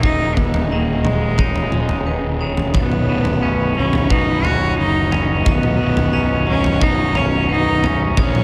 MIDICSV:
0, 0, Header, 1, 7, 480
1, 0, Start_track
1, 0, Key_signature, 5, "major"
1, 0, Tempo, 677201
1, 28, Time_signature, 4, 2, 24, 8
1, 5982, End_track
2, 0, Start_track
2, 0, Title_t, "String section"
2, 0, Program_c, 0, 48
2, 0, Note_on_c, 0, 82, 69
2, 24, Note_on_c, 0, 68, 62
2, 32, Note_on_c, 0, 75, 59
2, 1914, Note_off_c, 0, 82, 0
2, 1928, Note_off_c, 0, 75, 0
2, 1929, Note_off_c, 0, 68, 0
2, 1934, Note_on_c, 0, 83, 68
2, 1936, Note_on_c, 0, 66, 65
2, 1937, Note_on_c, 0, 75, 56
2, 1938, Note_on_c, 0, 73, 57
2, 3843, Note_off_c, 0, 83, 0
2, 3873, Note_on_c, 0, 82, 72
2, 5756, Note_off_c, 0, 75, 0
2, 5772, Note_off_c, 0, 82, 0
2, 5785, Note_on_c, 0, 70, 60
2, 5787, Note_on_c, 0, 82, 78
2, 5982, Note_off_c, 0, 66, 0
2, 5982, Note_off_c, 0, 70, 0
2, 5982, Note_off_c, 0, 73, 0
2, 5982, Note_off_c, 0, 82, 0
2, 5982, End_track
3, 0, Start_track
3, 0, Title_t, "Vibraphone"
3, 0, Program_c, 1, 11
3, 28, Note_on_c, 1, 75, 78
3, 500, Note_off_c, 1, 75, 0
3, 509, Note_on_c, 1, 75, 71
3, 985, Note_on_c, 1, 73, 71
3, 989, Note_off_c, 1, 75, 0
3, 1464, Note_on_c, 1, 71, 65
3, 1467, Note_off_c, 1, 73, 0
3, 1705, Note_on_c, 1, 73, 66
3, 1707, Note_off_c, 1, 71, 0
3, 1937, Note_off_c, 1, 73, 0
3, 1945, Note_on_c, 1, 73, 78
3, 2428, Note_off_c, 1, 73, 0
3, 2430, Note_on_c, 1, 71, 65
3, 2894, Note_off_c, 1, 71, 0
3, 2903, Note_on_c, 1, 71, 69
3, 3144, Note_on_c, 1, 73, 67
3, 3147, Note_off_c, 1, 71, 0
3, 3627, Note_off_c, 1, 73, 0
3, 3865, Note_on_c, 1, 75, 87
3, 4336, Note_off_c, 1, 75, 0
3, 4344, Note_on_c, 1, 75, 72
3, 4823, Note_on_c, 1, 73, 71
3, 4827, Note_off_c, 1, 75, 0
3, 5306, Note_off_c, 1, 73, 0
3, 5309, Note_on_c, 1, 71, 68
3, 5548, Note_on_c, 1, 73, 74
3, 5550, Note_off_c, 1, 71, 0
3, 5786, Note_off_c, 1, 73, 0
3, 5794, Note_on_c, 1, 73, 86
3, 5982, Note_off_c, 1, 73, 0
3, 5982, End_track
4, 0, Start_track
4, 0, Title_t, "Cello"
4, 0, Program_c, 2, 42
4, 18, Note_on_c, 2, 63, 86
4, 260, Note_on_c, 2, 59, 72
4, 271, Note_off_c, 2, 63, 0
4, 496, Note_off_c, 2, 59, 0
4, 500, Note_on_c, 2, 58, 69
4, 743, Note_on_c, 2, 56, 76
4, 754, Note_off_c, 2, 58, 0
4, 1226, Note_off_c, 2, 56, 0
4, 1957, Note_on_c, 2, 59, 76
4, 2645, Note_off_c, 2, 59, 0
4, 2672, Note_on_c, 2, 61, 79
4, 2913, Note_on_c, 2, 63, 83
4, 2924, Note_off_c, 2, 61, 0
4, 3151, Note_on_c, 2, 66, 76
4, 3162, Note_off_c, 2, 63, 0
4, 3384, Note_off_c, 2, 66, 0
4, 3389, Note_on_c, 2, 63, 82
4, 3724, Note_off_c, 2, 63, 0
4, 3879, Note_on_c, 2, 59, 86
4, 4566, Note_off_c, 2, 59, 0
4, 4596, Note_on_c, 2, 61, 90
4, 4840, Note_on_c, 2, 63, 89
4, 4850, Note_off_c, 2, 61, 0
4, 5083, Note_on_c, 2, 61, 80
4, 5093, Note_off_c, 2, 63, 0
4, 5313, Note_off_c, 2, 61, 0
4, 5317, Note_on_c, 2, 63, 91
4, 5649, Note_off_c, 2, 63, 0
4, 5792, Note_on_c, 2, 61, 93
4, 5982, Note_off_c, 2, 61, 0
4, 5982, End_track
5, 0, Start_track
5, 0, Title_t, "Clean electric guitar"
5, 0, Program_c, 3, 27
5, 33, Note_on_c, 3, 39, 63
5, 513, Note_on_c, 3, 51, 60
5, 990, Note_on_c, 3, 63, 68
5, 1223, Note_on_c, 3, 56, 62
5, 1232, Note_off_c, 3, 39, 0
5, 1697, Note_off_c, 3, 51, 0
5, 1706, Note_on_c, 3, 51, 61
5, 1947, Note_off_c, 3, 56, 0
5, 1948, Note_off_c, 3, 51, 0
5, 1948, Note_on_c, 3, 35, 62
5, 1950, Note_off_c, 3, 63, 0
5, 2190, Note_on_c, 3, 47, 59
5, 2427, Note_on_c, 3, 61, 65
5, 2673, Note_on_c, 3, 54, 58
5, 2901, Note_off_c, 3, 47, 0
5, 2910, Note_on_c, 3, 47, 60
5, 3144, Note_off_c, 3, 61, 0
5, 3147, Note_on_c, 3, 61, 66
5, 3150, Note_off_c, 3, 35, 0
5, 3385, Note_off_c, 3, 54, 0
5, 3387, Note_on_c, 3, 54, 62
5, 3621, Note_off_c, 3, 61, 0
5, 3624, Note_on_c, 3, 61, 66
5, 3862, Note_on_c, 3, 35, 62
5, 4101, Note_off_c, 3, 47, 0
5, 4109, Note_on_c, 3, 47, 62
5, 4344, Note_off_c, 3, 61, 0
5, 4347, Note_on_c, 3, 61, 69
5, 4583, Note_off_c, 3, 54, 0
5, 4586, Note_on_c, 3, 54, 65
5, 4826, Note_off_c, 3, 47, 0
5, 4835, Note_on_c, 3, 47, 68
5, 5063, Note_off_c, 3, 61, 0
5, 5066, Note_off_c, 3, 35, 0
5, 5071, Note_on_c, 3, 61, 70
5, 5306, Note_off_c, 3, 54, 0
5, 5315, Note_on_c, 3, 54, 67
5, 5544, Note_off_c, 3, 61, 0
5, 5552, Note_on_c, 3, 61, 73
5, 5791, Note_off_c, 3, 61, 0
5, 5793, Note_off_c, 3, 47, 0
5, 5793, Note_off_c, 3, 54, 0
5, 5793, Note_on_c, 3, 42, 69
5, 5982, Note_off_c, 3, 42, 0
5, 5982, End_track
6, 0, Start_track
6, 0, Title_t, "Picked electric bass"
6, 0, Program_c, 4, 34
6, 25, Note_on_c, 4, 27, 70
6, 1920, Note_off_c, 4, 27, 0
6, 1948, Note_on_c, 4, 23, 78
6, 2174, Note_off_c, 4, 23, 0
6, 2196, Note_on_c, 4, 23, 74
6, 2418, Note_off_c, 4, 23, 0
6, 2431, Note_on_c, 4, 23, 71
6, 2656, Note_off_c, 4, 23, 0
6, 2671, Note_on_c, 4, 23, 75
6, 2895, Note_off_c, 4, 23, 0
6, 2910, Note_on_c, 4, 23, 74
6, 3135, Note_off_c, 4, 23, 0
6, 3158, Note_on_c, 4, 23, 72
6, 3379, Note_off_c, 4, 23, 0
6, 3396, Note_on_c, 4, 30, 78
6, 3845, Note_off_c, 4, 30, 0
6, 3875, Note_on_c, 4, 23, 83
6, 4098, Note_off_c, 4, 23, 0
6, 4120, Note_on_c, 4, 23, 77
6, 4340, Note_off_c, 4, 23, 0
6, 4359, Note_on_c, 4, 23, 76
6, 4580, Note_off_c, 4, 23, 0
6, 4596, Note_on_c, 4, 23, 77
6, 4818, Note_off_c, 4, 23, 0
6, 4831, Note_on_c, 4, 23, 81
6, 5056, Note_off_c, 4, 23, 0
6, 5081, Note_on_c, 4, 23, 77
6, 5301, Note_off_c, 4, 23, 0
6, 5318, Note_on_c, 4, 23, 83
6, 5766, Note_off_c, 4, 23, 0
6, 5793, Note_on_c, 4, 34, 87
6, 5982, Note_off_c, 4, 34, 0
6, 5982, End_track
7, 0, Start_track
7, 0, Title_t, "Drums"
7, 24, Note_on_c, 9, 36, 93
7, 24, Note_on_c, 9, 43, 74
7, 94, Note_off_c, 9, 36, 0
7, 95, Note_off_c, 9, 43, 0
7, 262, Note_on_c, 9, 36, 62
7, 333, Note_off_c, 9, 36, 0
7, 382, Note_on_c, 9, 43, 71
7, 453, Note_off_c, 9, 43, 0
7, 741, Note_on_c, 9, 43, 73
7, 741, Note_on_c, 9, 47, 65
7, 812, Note_off_c, 9, 43, 0
7, 812, Note_off_c, 9, 47, 0
7, 977, Note_on_c, 9, 43, 65
7, 983, Note_on_c, 9, 36, 88
7, 1048, Note_off_c, 9, 43, 0
7, 1054, Note_off_c, 9, 36, 0
7, 1103, Note_on_c, 9, 43, 69
7, 1174, Note_off_c, 9, 43, 0
7, 1220, Note_on_c, 9, 47, 63
7, 1290, Note_off_c, 9, 47, 0
7, 1339, Note_on_c, 9, 43, 72
7, 1410, Note_off_c, 9, 43, 0
7, 1824, Note_on_c, 9, 43, 65
7, 1895, Note_off_c, 9, 43, 0
7, 1941, Note_on_c, 9, 43, 74
7, 1946, Note_on_c, 9, 36, 97
7, 2012, Note_off_c, 9, 43, 0
7, 2017, Note_off_c, 9, 36, 0
7, 2066, Note_on_c, 9, 47, 67
7, 2137, Note_off_c, 9, 47, 0
7, 2304, Note_on_c, 9, 43, 69
7, 2374, Note_off_c, 9, 43, 0
7, 2786, Note_on_c, 9, 43, 74
7, 2857, Note_off_c, 9, 43, 0
7, 2909, Note_on_c, 9, 36, 86
7, 2980, Note_off_c, 9, 36, 0
7, 3152, Note_on_c, 9, 43, 73
7, 3223, Note_off_c, 9, 43, 0
7, 3632, Note_on_c, 9, 43, 75
7, 3703, Note_off_c, 9, 43, 0
7, 3871, Note_on_c, 9, 36, 100
7, 3872, Note_on_c, 9, 43, 82
7, 3942, Note_off_c, 9, 36, 0
7, 3943, Note_off_c, 9, 43, 0
7, 3992, Note_on_c, 9, 47, 73
7, 4063, Note_off_c, 9, 47, 0
7, 4230, Note_on_c, 9, 43, 74
7, 4301, Note_off_c, 9, 43, 0
7, 4708, Note_on_c, 9, 43, 77
7, 4779, Note_off_c, 9, 43, 0
7, 4830, Note_on_c, 9, 36, 91
7, 4901, Note_off_c, 9, 36, 0
7, 5069, Note_on_c, 9, 43, 73
7, 5140, Note_off_c, 9, 43, 0
7, 5555, Note_on_c, 9, 43, 82
7, 5626, Note_off_c, 9, 43, 0
7, 5793, Note_on_c, 9, 36, 104
7, 5798, Note_on_c, 9, 43, 86
7, 5864, Note_off_c, 9, 36, 0
7, 5869, Note_off_c, 9, 43, 0
7, 5918, Note_on_c, 9, 47, 77
7, 5982, Note_off_c, 9, 47, 0
7, 5982, End_track
0, 0, End_of_file